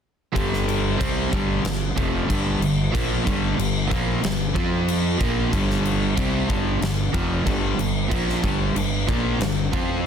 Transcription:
0.35 fingered electric bass G1, overdriven electric guitar G2 D3 G3, kick, crash
0.53 snare
0.68 crash
1.00 fingered electric bass C2, overdriven electric guitar C3 G3 C4, kick, crash
1.32 fingered electric bass G1, overdriven electric guitar G2 D3 G3, kick, crash
1.64 fingered electric bass G1, overdriven electric guitar G2 D3, snare, crash
1.97 fingered electric bass F1, overdriven electric guitar F2 C3 F3, kick, crash
2.29 fingered electric bass G1, overdriven electric guitar G2 D3 G3, kick, crash
2.60 fingered electric bass G1, overdriven electric guitar G2 D3, crash
2.93 fingered electric bass A#1, overdriven electric guitar A#2 F3 A#3, kick, crash
3.26 fingered electric bass G1, overdriven electric guitar G2 D3 G3, kick, crash
3.58 fingered electric bass G1, overdriven electric guitar G2 D3, crash
3.90 fingered electric bass A#1, overdriven electric guitar A#2 F3 A#3, kick, crash
4.22 fingered electric bass G1, overdriven electric guitar G2 D3, snare, crash
4.54 fingered electric bass F2, overdriven electric guitar F3 C4 F4, kick, crash
4.88 crash
5.20 fingered electric bass A#1, overdriven electric guitar A#2 F3 A#3, kick, crash
5.52 fingered electric bass G1, overdriven electric guitar G2 D3 G3, kick, crash
5.70 snare
5.85 crash
6.16 fingered electric bass C2, overdriven electric guitar C3 G3 C4, kick, crash
6.48 fingered electric bass G1, overdriven electric guitar G2 D3 G3, kick, crash
6.81 fingered electric bass G1, overdriven electric guitar G2 D3, snare, crash
7.13 fingered electric bass F1, overdriven electric guitar F2 C3 F3, kick, crash
7.46 fingered electric bass G1, overdriven electric guitar G2 D3 G3, kick, crash
7.77 fingered electric bass G1, overdriven electric guitar G2 D3, crash
8.11 fingered electric bass A#1, overdriven electric guitar A#2 F3 A#3, kick, crash
8.29 snare
8.43 fingered electric bass G1, overdriven electric guitar G2 D3 G3, kick, crash
8.75 fingered electric bass G1, overdriven electric guitar G2 D3, crash
9.09 fingered electric bass A#1, overdriven electric guitar A#2 F3 A#3, kick, crash
9.39 fingered electric bass G1, overdriven electric guitar G2 D3, snare, crash
9.73 fingered electric bass F2, overdriven electric guitar F3 C4 F4, kick, crash

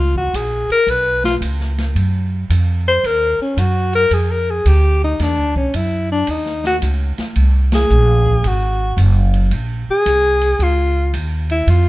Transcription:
Already playing: upright bass C#2, alto saxophone F4
0.16 alto saxophone F#4, kick
0.34 upright bass A#1, alto saxophone G#4, hi-hat pedal, ride
0.70 alto saxophone A#4, muted upright bass stroke, ride
0.86 upright bass B1, alto saxophone B4, ride
1.24 alto saxophone F4, snare
1.41 upright bass C#2, hi-hat pedal, ride
1.60 snare
1.78 snare, ride
1.95 upright bass F#2, ride
2.50 upright bass F2, hi-hat pedal, ride
2.88 alto saxophone C5
3.03 upright bass D#2, alto saxophone A#4, ride
3.39 alto saxophone C#4, muted upright bass stroke
3.57 upright bass F#2, alto saxophone F#4, hi-hat pedal, ride
3.93 alto saxophone A#4, ride
4.11 upright bass F2, alto saxophone G#4, ride
4.31 alto saxophone A#4
4.50 alto saxophone G#4
4.65 upright bass D2, alto saxophone G4, hi-hat pedal, ride
5.04 alto saxophone D#4
5.19 upright bass E2, alto saxophone D4, snare, ride
5.38 upright bass D2
5.56 upright bass B1, alto saxophone C#4, kick
5.74 upright bass F#2, alto saxophone E4, hi-hat pedal, ride
6.12 alto saxophone D4
6.27 upright bass D#2, alto saxophone D#4, ride
6.46 snare
6.64 alto saxophone F#4, snare
6.82 upright bass C#2, hi-hat pedal, ride
7.18 muted upright bass stroke, snare, ride
7.36 upright bass C2, ride
7.72 alto saxophone G#4, snare, ride
7.89 upright bass A#1, hi-hat pedal
8.26 kick
8.43 upright bass G#1, alto saxophone F#4, ride
8.97 upright bass F#1, hi-hat pedal, ride
9.34 ride
9.51 upright bass A#1, ride
9.89 alto saxophone G#4, muted upright bass stroke
10.06 upright bass C2, hi-hat pedal, ride
10.41 ride
10.59 upright bass C#2, alto saxophone F4, ride
11.13 upright bass D#2, hi-hat pedal, ride
11.49 alto saxophone E4, ride
11.67 upright bass F2, alto saxophone F4, ride

